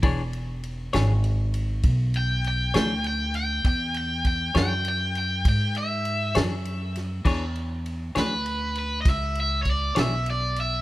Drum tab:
CC |------------|------------|x-----------|
RD |xxxxxxxxxxxx|xxxxxxxxxxxx|-xxxxxxxxxxx|
SD |---o-----o--|---o-----o-o|---o--o--o--|
BD |o-----o-----|o-o---o-----|o-----o-o---|